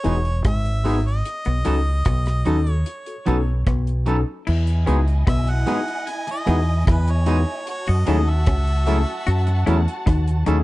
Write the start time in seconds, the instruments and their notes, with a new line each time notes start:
Already playing: harmonica C#5
0.03 fingered electric bass E1, clean electric guitar E3 G#3 B3 D#4 G#4, tine electric piano B3 D#4 F#4 G#4, closed hi-hat
0.25 closed hi-hat
0.44 fingered electric bass G#1, clean electric guitar G#3, harmonica E5, kick, cross-stick, closed hi-hat
0.65 closed hi-hat
0.84 clean electric guitar G#3 B3 D#4 G#4, tine electric piano B3 D#4 F#4 G#4, open hi-hat
1.08 harmonica D#5
1.26 closed hi-hat
1.45 fingered electric bass B1, clean electric guitar B3, closed hi-hat
1.65 fingered electric bass C#2, clean electric guitar F#3 B3 C#4 D#4 A4, tine electric piano C#4 D#4 F#4 A4, closed hi-hat
2.05 fingered electric bass B1, clean electric guitar B3, kick, cross-stick, closed hi-hat
2.26 cross-stick, closed hi-hat
2.45 fingered electric bass D#2, clean electric guitar F#3 B3 D#4 A4, tine electric piano C#4 D#4 F#4 A4, closed hi-hat
2.67 tine electric piano F#4 A4, closed hi-hat
2.71 harmonica C#5
2.86 closed hi-hat
3.06 tine electric piano F#4 A4, closed hi-hat
3.26 fingered electric bass B1, clean electric guitar F#3 B3 D#4 A4, tine electric piano C#4 D#4 F#4 A4, closed hi-hat
3.67 fingered electric bass B1, clean electric guitar B3, kick, cross-stick, closed hi-hat
3.87 closed hi-hat
4.06 clean electric guitar F#3 B3 D#4 A4, tine electric piano C#4 D#4 F#4 A4, closed hi-hat
4.46 fingered electric bass E2, violin section E4 D#5 G#5, clean electric guitar E4, crash
4.67 closed hi-hat
4.86 fingered electric bass C#2, clean electric guitar G#3 B3 C#4 D#4 G#4, tine electric piano B3 D#4 F#4 G#4, closed hi-hat
5.08 closed hi-hat
5.27 fingered electric bass B1, clean electric guitar B3, harmonica E5, kick, cross-stick, closed hi-hat
5.47 harmonica F#5, closed hi-hat
5.66 clean electric guitar G#3 B3 D#4 G#4, tine electric piano B3 D#4 F#4 G#4, closed hi-hat
5.88 closed hi-hat
6.07 harmonica G#5, closed hi-hat
6.27 harmonica D#5, muted clean electric guitar stroke, closed hi-hat
6.46 fingered electric bass E2, clean electric guitar G#3 B3 D#4 E4 G#4, tine electric piano B3 D#4 F#4 G#4, closed hi-hat
6.87 fingered electric bass E2, clean electric guitar E4, harmonica B4, kick, cross-stick, closed hi-hat
7.08 harmonica C#5, closed hi-hat
7.26 clean electric guitar G#3 B3 D#4 G#4, tine electric piano B3 D#4 F#4 G#4, closed hi-hat
7.66 violin section F#4 F#5 A5, harmonica C#5, closed hi-hat
7.87 fingered electric bass F#2, clean electric guitar F#4, harmonica D#5, closed hi-hat
8.06 fingered electric bass D#2, clean electric guitar F#3 C#4 D#4 E4 A4, tine electric piano A3 C#4 E4 G#4, closed hi-hat
8.30 harmonica E5
8.46 fingered electric bass C#2, clean electric guitar C#4, kick, cross-stick, closed hi-hat
8.67 closed hi-hat
8.86 clean electric guitar F#3 C#4 E4 A4, tine electric piano A3 C#4 E4 G#4, closed hi-hat
9.27 fingered electric bass F#2, clean electric guitar F#4, closed hi-hat
9.47 muted clean electric guitar stroke, closed hi-hat
9.66 fingered electric bass E2, clean electric guitar F#3 C#4 E4 A4, tine electric piano A3 C#4 E4 G#4, closed hi-hat
9.88 closed hi-hat
10.06 fingered electric bass D#2, clean electric guitar D#4, kick, cross-stick, closed hi-hat
10.28 closed hi-hat
10.46 fingered electric bass D#2, clean electric guitar F#3 C#4 D#4 E4 A4, tine electric piano A3 C#4 E4 G#4, closed hi-hat